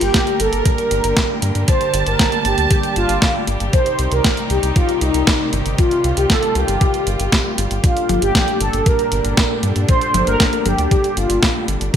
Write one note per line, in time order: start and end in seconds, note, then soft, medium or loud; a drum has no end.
0.00 0.11 G1 medium
0.00 3.69 D3 medium
0.00 7.80 G3 medium
0.00 3.69 A#3 medium
0.00 11.90 G4 medium
0.00 0.41 G4 medium
0.00 1.66 A#4 medium
0.00 closed hi-hat medium
0.14 kick loud
0.14 snare loud
0.14 closed hi-hat medium
0.27 closed hi-hat soft
0.40 0.49 G1 medium
0.40 0.64 A4 loud
0.40 closed hi-hat medium
0.53 0.62 G1 medium
0.53 closed hi-hat medium
0.65 1.38 A#4 loud
0.65 kick loud
0.65 closed hi-hat medium
0.78 closed hi-hat soft
0.91 1.00 G1 medium
0.91 closed hi-hat medium
1.04 1.13 G1 medium
1.04 closed hi-hat medium
1.17 kick loud
1.17 snare loud
1.17 closed hi-hat medium
1.42 1.52 G2 medium
1.42 closed hi-hat medium
1.55 1.65 G2 medium
1.55 closed hi-hat medium
1.68 2.04 C5 loud
1.68 3.71 A5 medium
1.68 kick loud
1.68 closed hi-hat medium
1.81 closed hi-hat soft
1.94 2.03 G1 medium
1.94 closed hi-hat medium
2.06 2.16 G1 medium
2.06 2.43 A#4 loud
2.06 closed hi-hat medium
2.19 kick loud
2.19 snare loud
2.19 closed hi-hat medium
2.32 closed hi-hat soft
2.45 2.54 G1 loud
2.45 2.69 G4 medium
2.45 closed hi-hat medium
2.58 2.67 D2 medium
2.58 closed hi-hat medium
2.71 2.95 G4 medium
2.71 kick loud
2.71 closed hi-hat medium
2.83 closed hi-hat soft
2.96 3.06 G1 medium
2.96 3.44 F4 medium
2.96 closed hi-hat medium
3.09 3.18 G1 medium
3.09 closed hi-hat soft
3.22 kick loud
3.22 snare loud
3.22 closed hi-hat medium
3.47 3.57 G1 medium
3.47 closed hi-hat medium
3.60 3.70 G1 medium
3.60 closed hi-hat soft
3.73 7.80 C3 medium
3.73 7.80 D#3 medium
3.73 5.77 D#4 medium
3.73 4.13 C5 loud
3.73 kick loud
3.73 closed hi-hat medium
3.86 closed hi-hat soft
3.99 4.08 C2 medium
3.99 closed hi-hat medium
4.12 4.21 C2 medium
4.12 4.51 A#4 loud
4.12 closed hi-hat medium
4.24 kick loud
4.24 snare loud
4.24 closed hi-hat medium
4.37 closed hi-hat soft
4.50 4.59 C2 loud
4.50 4.77 G4 loud
4.50 closed hi-hat medium
4.63 4.72 C2 medium
4.63 closed hi-hat medium
4.76 5.00 F4 medium
4.76 kick loud
4.76 closed hi-hat medium
4.89 closed hi-hat soft
5.01 5.11 C2 medium
5.01 5.49 D#4 medium
5.01 closed hi-hat medium
5.14 5.23 C2 medium
5.14 closed hi-hat soft
5.27 kick loud
5.27 snare loud
5.27 closed hi-hat medium
5.53 5.62 G1 loud
5.53 closed hi-hat medium
5.66 5.75 G1 medium
5.66 closed hi-hat soft
5.78 6.18 F4 medium
5.78 7.82 F4 medium
5.78 kick loud
5.78 closed hi-hat medium
5.91 closed hi-hat soft
6.04 6.13 C2 medium
6.04 closed hi-hat medium
6.17 6.26 C2 medium
6.17 6.30 G4 medium
6.17 closed hi-hat soft
6.30 6.56 A4 loud
6.30 kick loud
6.30 snare loud
6.30 closed hi-hat medium
6.43 closed hi-hat soft
6.55 6.65 C2 medium
6.55 7.54 G4 loud
6.55 closed hi-hat medium
6.68 6.77 G1 medium
6.68 closed hi-hat medium
6.81 kick loud
6.81 closed hi-hat medium
6.94 closed hi-hat soft
7.07 7.16 G1 medium
7.07 closed hi-hat medium
7.20 7.29 G1 medium
7.20 closed hi-hat soft
7.32 kick loud
7.32 snare loud
7.32 closed hi-hat medium
7.58 7.67 G1 medium
7.58 closed hi-hat medium
7.71 7.80 G1 medium
7.71 closed hi-hat soft
7.84 11.90 A#2 medium
7.84 11.90 D3 medium
7.84 11.90 G3 medium
7.84 11.90 D4 medium
7.84 8.24 F4 medium
7.84 kick loud
7.84 closed hi-hat medium
7.97 closed hi-hat soft
8.09 8.19 G1 medium
8.09 closed hi-hat medium
8.09 high tom medium
8.22 8.31 G1 medium
8.22 8.58 G4 medium
8.22 closed hi-hat soft
8.35 kick loud
8.35 snare loud
8.35 closed hi-hat medium
8.35 high tom medium
8.48 closed hi-hat soft
8.61 8.70 G1 loud
8.61 8.85 A4 loud
8.61 closed hi-hat medium
8.73 8.83 G1 medium
8.73 closed hi-hat soft
8.86 9.59 A#4 loud
8.86 kick loud
8.86 closed hi-hat medium
8.99 closed hi-hat soft
9.12 9.21 G1 medium
9.12 closed hi-hat medium
9.25 9.34 G1 medium
9.25 closed hi-hat medium
9.37 kick loud
9.37 snare loud
9.37 closed hi-hat medium
9.63 9.72 G2 medium
9.63 closed hi-hat medium
9.76 9.85 G2 medium
9.76 closed hi-hat soft
9.89 10.28 C5 loud
9.89 kick loud
9.89 closed hi-hat medium
10.01 closed hi-hat soft
10.14 10.24 G1 medium
10.14 closed hi-hat medium
10.14 high tom medium
10.27 10.36 G1 medium
10.27 10.67 A#4 loud
10.27 closed hi-hat medium
10.40 kick loud
10.40 snare loud
10.40 closed hi-hat medium
10.53 closed hi-hat soft
10.65 10.75 G1 medium
10.65 10.90 G4 medium
10.65 closed hi-hat medium
10.65 high tom medium
10.78 10.88 D2 medium
10.78 closed hi-hat medium
10.91 11.18 G4 medium
10.91 kick loud
10.91 closed hi-hat medium
11.04 closed hi-hat soft
11.17 11.26 G1 medium
11.17 11.65 F4 medium
11.17 closed hi-hat medium
11.30 11.39 G1 medium
11.30 closed hi-hat medium
11.43 kick loud
11.43 snare loud
11.43 closed hi-hat medium
11.68 11.77 G1 medium
11.68 closed hi-hat medium
11.81 11.90 G1 medium
11.81 closed hi-hat medium